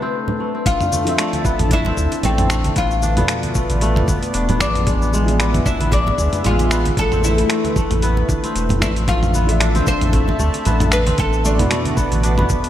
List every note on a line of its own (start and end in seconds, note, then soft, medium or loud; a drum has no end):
0.00 0.36 C3 medium
0.00 0.37 A3 medium
0.00 0.40 A3 medium
0.00 0.66 A3 medium
0.00 0.54 C4 loud
0.00 1.55 D4 medium
0.00 0.38 E4 medium
0.00 0.67 F4 medium
0.00 1.51 B4 medium
0.00 0.66 E5 medium
0.28 low conga medium
0.40 0.92 A3 medium
0.55 1.07 C4 medium
0.66 3.61 D4 medium
0.66 1.73 F4 loud
0.66 kick loud
0.66 closed hi-hat medium
0.66 shaker soft
0.81 mid tom medium
0.81 shaker soft
0.88 3.61 A4 medium
0.88 3.61 E5 medium
0.92 1.19 A3 medium
0.92 high conga medium
0.92 shaker medium
0.99 3.61 A5 medium
1.05 1.67 F3 medium
1.05 1.68 A3 medium
1.05 1.51 C4 medium
1.05 1.69 C4 medium
1.05 closed hi-hat soft
1.05 muted conga soft
1.05 shaker soft
1.09 1.69 E5 medium
1.18 2.24 A3 loud
1.18 finger snap medium
1.18 closed hi-hat medium
1.18 shaker soft
1.33 closed hi-hat soft
1.33 high conga medium
1.33 shaker soft
1.45 1.92 B3 medium
1.45 kick loud
1.45 shaker medium
1.59 1.92 A1 loud
1.59 closed hi-hat soft
1.59 mid tom medium
1.59 high conga medium
1.59 shaker soft
1.70 1.79 F3 medium
1.70 1.79 A3 medium
1.70 1.79 C4 medium
1.70 3.02 D4 loud
1.70 1.80 E4 medium
1.70 2.26 E4 loud
1.70 kick loud
1.70 closed hi-hat medium
1.70 muted conga medium
1.70 shaker soft
1.85 2.38 C4 medium
1.85 muted conga medium
1.85 high conga medium
1.85 low conga medium
1.97 2.08 D2 medium
1.97 kick medium
1.97 shaker medium
2.12 closed hi-hat soft
2.12 muted conga soft
2.12 shaker soft
2.23 2.71 A1 medium
2.23 2.50 A3 medium
2.23 2.79 C4 medium
2.23 closed hi-hat medium
2.23 low conga loud
2.23 shaker soft
2.38 2.82 C4 medium
2.38 closed hi-hat soft
2.38 mid tom medium
2.38 muted conga medium
2.38 shaker soft
2.50 3.55 A3 loud
2.50 finger snap medium
2.50 shaker medium
2.64 closed hi-hat soft
2.64 high conga medium
2.64 shaker soft
2.76 3.24 A1 medium
2.76 3.17 B3 medium
2.76 6.98 B3 medium
2.76 4.31 F4 loud
2.76 kick loud
2.76 closed hi-hat medium
2.76 shaker soft
2.91 4.87 F4 medium
2.91 shaker soft
3.01 4.34 D4 loud
3.01 5.71 B4 medium
3.01 high conga medium
3.01 shaker medium
3.16 4.58 B2 medium
3.16 4.57 F3 medium
3.16 4.59 A3 medium
3.16 3.70 B3 loud
3.16 4.60 D4 medium
3.16 closed hi-hat soft
3.16 mid tom medium
3.16 muted conga soft
3.16 shaker soft
3.24 5.72 D5 medium
3.28 finger snap medium
3.28 closed hi-hat medium
3.28 shaker soft
3.43 closed hi-hat soft
3.43 high conga medium
3.43 shaker soft
3.55 3.82 A3 medium
3.55 kick loud
3.55 shaker medium
3.70 4.03 A1 loud
3.70 4.08 B3 medium
3.70 closed hi-hat soft
3.70 high conga medium
3.70 shaker soft
3.81 4.93 A3 loud
3.81 closed hi-hat medium
3.81 shaker soft
3.96 mid tom medium
3.96 muted conga medium
4.08 4.49 B3 loud
4.08 kick loud
4.08 muted conga soft
4.08 high conga medium
4.08 shaker medium
4.23 closed hi-hat soft
4.23 shaker soft
4.34 4.62 E1 medium
4.34 5.65 D4 loud
4.34 closed hi-hat medium
4.34 shaker soft
4.49 5.01 B3 medium
4.49 closed hi-hat soft
4.49 low conga loud
4.49 shaker soft
4.59 5.61 A1 medium
4.59 5.23 F3 medium
4.59 5.24 G#3 medium
4.59 5.25 B3 medium
4.59 5.66 D4 medium
4.59 finger snap medium
4.59 kick medium
4.59 shaker medium
4.63 5.26 D4 medium
4.75 closed hi-hat soft
4.75 mid tom medium
4.75 shaker soft
4.87 5.12 G#3 medium
4.87 kick loud
4.87 closed hi-hat medium
4.87 shaker soft
5.02 5.40 B3 medium
5.02 9.08 E5 medium
5.02 shaker soft
5.11 6.18 G#3 loud
5.11 7.82 G#4 medium
5.11 high conga medium
5.11 shaker medium
5.26 5.88 F3 medium
5.26 5.89 G#3 medium
5.26 5.90 B3 medium
5.26 5.90 D4 loud
5.26 closed hi-hat soft
5.26 muted conga soft
5.26 shaker soft
5.40 5.80 B3 loud
5.40 finger snap medium
5.40 closed hi-hat medium
5.40 shaker soft
5.54 closed hi-hat soft
5.54 mid tom medium
5.54 high conga medium
5.54 shaker soft
5.66 6.97 D4 loud
5.66 5.92 E4 medium
5.66 kick loud
5.66 shaker medium
5.80 6.13 A1 loud
5.80 6.33 B3 medium
5.80 closed hi-hat soft
5.80 high conga medium
5.80 shaker soft
5.91 6.00 F3 medium
5.91 6.00 G#3 medium
5.91 6.00 B3 medium
5.91 6.01 D4 medium
5.91 6.46 D4 loud
5.91 kick loud
5.91 closed hi-hat medium
5.91 muted conga medium
5.91 shaker soft
6.07 muted conga medium
6.07 high conga medium
6.07 low conga medium
6.18 6.29 D2 medium
6.18 6.44 G#3 medium
6.18 kick medium
6.18 shaker medium
6.33 6.71 B3 medium
6.33 closed hi-hat soft
6.33 mid tom medium
6.33 muted conga soft
6.33 shaker soft
6.44 6.92 A1 medium
6.44 7.03 G#3 medium
6.44 6.98 F4 loud
6.44 closed hi-hat medium
6.44 low conga medium
6.44 shaker soft
6.59 closed hi-hat soft
6.59 muted conga medium
6.59 shaker soft
6.71 7.18 B3 loud
6.71 finger snap medium
6.71 shaker medium
6.85 closed hi-hat soft
6.85 high conga medium
6.85 shaker soft
6.97 7.45 A1 medium
6.97 9.08 A3 medium
6.97 8.29 D4 loud
6.97 7.24 A4 loud
6.97 kick loud
6.97 closed hi-hat medium
6.97 shaker soft
7.10 7.64 C4 loud
7.10 9.92 B4 medium
7.10 mid tom medium
7.10 shaker soft
7.23 7.73 E4 medium
7.23 high conga medium
7.23 shaker medium
7.36 8.78 E3 medium
7.36 8.79 A3 medium
7.36 8.80 E4 medium
7.36 closed hi-hat soft
7.36 muted conga soft
7.36 shaker soft
7.50 7.76 A3 medium
7.50 finger snap medium
7.50 closed hi-hat medium
7.50 shaker soft
7.64 8.09 C4 medium
7.64 closed hi-hat soft
7.64 high conga medium
7.64 shaker soft
7.76 8.82 A3 loud
7.76 kick loud
7.76 low conga medium
7.76 shaker medium
7.91 8.24 A1 loud
7.91 closed hi-hat soft
7.91 mid tom medium
7.91 high conga medium
7.91 shaker soft
8.02 8.50 B3 loud
8.02 closed hi-hat medium
8.02 shaker soft
8.17 muted conga medium
8.29 9.61 D4 loud
8.29 kick loud
8.29 muted conga soft
8.29 high conga medium
8.29 shaker medium
8.44 8.97 C4 loud
8.44 closed hi-hat soft
8.44 shaker soft
8.55 8.83 E1 medium
8.55 closed hi-hat medium
8.55 shaker soft
8.69 closed hi-hat soft
8.69 mid tom medium
8.69 low conga medium
8.69 shaker soft
8.80 9.82 A1 loud
8.80 9.44 F3 medium
8.80 9.45 A3 medium
8.80 9.08 A3 medium
8.80 9.46 C4 medium
8.80 9.46 D4 medium
8.80 8.89 E4 medium
8.80 finger snap medium
8.80 kick medium
8.80 shaker medium
8.96 9.41 C4 medium
8.96 closed hi-hat soft
8.96 shaker soft
9.08 10.13 A3 medium
9.08 12.03 D4 medium
9.08 9.87 F4 loud
9.08 kick loud
9.08 closed hi-hat medium
9.08 shaker soft
9.23 12.03 A4 medium
9.23 mid tom medium
9.23 shaker soft
9.34 9.82 B3 loud
9.34 12.03 E5 medium
9.34 high conga medium
9.34 shaker medium
9.47 10.09 F3 medium
9.47 10.10 A3 medium
9.47 10.11 E5 loud
9.47 closed hi-hat soft
9.47 muted conga soft
9.47 shaker soft
9.60 10.92 D4 loud
9.60 finger snap medium
9.60 closed hi-hat medium
9.60 shaker soft
9.75 10.28 C4 loud
9.75 closed hi-hat soft
9.75 high conga medium
9.75 shaker soft
9.80 12.03 A5 medium
9.87 10.89 C5 loud
9.87 kick loud
9.87 shaker medium
10.01 10.34 A1 loud
10.01 closed hi-hat soft
10.01 mid tom medium
10.01 high conga medium
10.01 shaker soft
10.12 10.21 F3 medium
10.12 10.21 A3 medium
10.12 10.39 A3 medium
10.12 10.22 C4 medium
10.12 10.22 E4 medium
10.12 kick loud
10.12 closed hi-hat medium
10.12 muted conga medium
10.12 shaker soft
10.28 10.72 C4 medium
10.28 muted conga medium
10.28 high conga medium
10.28 low conga medium
10.39 10.50 D2 medium
10.39 11.44 A3 loud
10.39 kick medium
10.39 shaker medium
10.54 closed hi-hat soft
10.54 muted conga soft
10.54 shaker soft
10.65 11.14 A1 medium
10.65 11.13 B3 loud
10.65 closed hi-hat medium
10.65 low conga medium
10.65 shaker soft
10.80 closed hi-hat soft
10.80 mid tom medium
10.80 muted conga medium
10.80 shaker soft
10.92 12.23 D4 loud
10.92 11.19 B4 loud
10.92 finger snap medium
10.92 shaker medium
11.07 11.65 C4 loud
11.07 closed hi-hat soft
11.07 high conga medium
11.07 shaker soft
11.18 11.66 A1 medium
11.18 12.69 B3 medium
11.18 11.43 A4 loud
11.18 kick loud
11.18 closed hi-hat medium
11.18 shaker soft
11.33 12.69 D5 medium
11.33 shaker soft
11.40 12.69 B4 medium
11.44 11.70 A3 medium
11.44 12.69 D4 medium
11.44 12.69 F#4 medium
11.44 high conga medium
11.44 shaker medium
11.58 12.69 B2 medium
11.58 12.69 E3 medium
11.58 12.69 A3 medium
11.58 11.96 B3 medium
11.58 12.69 D4 loud
11.58 closed hi-hat soft
11.58 mid tom medium
11.58 muted conga soft
11.58 shaker soft
11.71 12.69 A3 loud
11.71 finger snap medium
11.71 closed hi-hat medium
11.71 shaker soft
11.85 closed hi-hat soft
11.85 high conga medium
11.85 shaker soft
11.97 12.38 B3 loud
11.97 kick loud
11.97 shaker medium
12.12 12.45 A1 loud
12.12 closed hi-hat soft
12.12 high conga medium
12.12 shaker soft
12.23 12.69 D4 loud
12.23 closed hi-hat medium
12.23 shaker soft
12.38 12.69 B3 loud
12.38 mid tom medium
12.38 muted conga medium
12.49 kick medium
12.49 muted conga soft
12.49 high conga medium
12.49 shaker medium
12.64 closed hi-hat soft
12.64 shaker soft